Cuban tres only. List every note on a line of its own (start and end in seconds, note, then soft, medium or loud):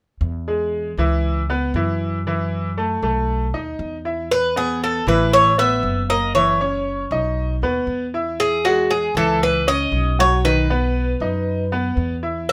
4.31 4.57 B4 medium
4.57 4.83 G#4 medium
4.84 5.08 A4 medium
5.08 5.33 B4 medium
5.33 5.59 C#5 loud
5.59 6.09 E5 medium
6.10 6.34 D#5 medium
6.35 7.84 C#5 medium
8.40 8.66 G#4 medium
8.65 8.91 F#4 medium
8.91 9.16 G#4 medium
9.17 9.43 A4 medium
9.43 9.69 B4 medium
9.68 10.20 D#5 medium
10.20 10.43 C#5 loud
10.45 11.94 B4 medium
12.49 12.52 E5 medium